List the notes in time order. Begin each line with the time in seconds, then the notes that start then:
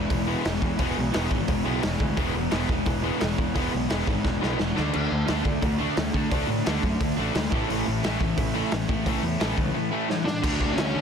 Already playing: E2 B2 E3
0.10 E1 E3 G#3, kick, open hi-hat
0.27 E3 G#3 B3
0.44 E1 E2 E3 G#3, snare, open hi-hat
0.62 E2 E3 G#3, kick
0.79 E1 E2 B2 E3 G#3 B3, kick, open hi-hat
0.97 B1 E3 G#3
1.13 E1 E3 G#3 B3, snare, open hi-hat
1.31 G#1 E2 B2 E3 G#3, kick
1.48 E1 E3 G#3, kick, open hi-hat
1.65 B1 E3 G#3 B3
1.82 E1 E2 B2 E3 G#3, snare, open hi-hat
2.00 D2 E3 G#3, kick
2.17 E1 E2 B2 E3 G#3 B3, kick, open hi-hat
2.35 E1 E3 G#3
2.51 E1 E3 G#3 B3, snare, open hi-hat
2.69 E1 E2 B2 E3 G#3, kick
2.86 E1 E3 G#3, kick, open hi-hat
3.04 E3 G#3 B3
3.21 E1 E3 G#3, snare, open hi-hat
3.38 E2 E3 G#3, kick
3.55 E1 E2 B2 E3 G#3 B3, kick, open hi-hat
3.59 E3
3.74 B1 E3 G#3
3.90 E1 E3 G#3 B3, snare, open hi-hat
4.07 G#1 E2 B2 E3 G#3, kick
4.25 E1 E3 G#3, kick, snare
4.41 B1 E3 G#3 B3, snare
4.58 E1 E2 B2 E3 G#3, snare
4.76 D2 D3 A3 D4, snare
4.93 D2 D3 A3 D4, crash
5.11 D2 D3 A3
5.27 D2 D3 A3 D4, snare, open hi-hat
5.45 D2 D3 A3, kick
5.62 D2 D3 A3, kick, open hi-hat
5.80 D3 A3 D4
5.97 D2 D3 A3, snare, open hi-hat
6.14 D3 A3 D4, kick
6.31 D2 D3 A3 D4, kick, open hi-hat
6.49 A2 D3 A3
6.66 D2 D3 A3 D4, snare, open hi-hat
6.83 F#2 D3 A3, kick
7.01 D2 D3 A3, kick, open hi-hat
7.18 A1 D3 A3 D4
7.35 D2 D3 A3, snare, open hi-hat
7.52 A1 A2 E3 A3, kick
7.70 A1 A2 E3 A3, open hi-hat
7.87 A1 A2 E3
8.04 A1 A2 E3 A3, snare, open hi-hat
8.21 A1 A2 E3, kick
8.38 A1 A2 E3, kick, open hi-hat
8.54 A2 E3 A3
8.59 A2
8.72 A1 A2 E3, snare, open hi-hat
8.89 A2 E3 A3, kick
9.06 A1 A2 E3 A3, kick, open hi-hat
9.23 E2 A2 E3
9.40 A1 A2 E3 A3, snare, open hi-hat
9.57 C#2 A2 E3, kick
9.74 A2 E3
9.92 A2 E3 A3
10.09 A2 E3, snare
10.25 A2 E3 D4 D5, snare
10.42 D2 D3 F#3 A3 D4 F#4, kick, crash
10.61 D2, kick
10.74 D2 C#4 C#5, crash
10.78 snare
10.96 D3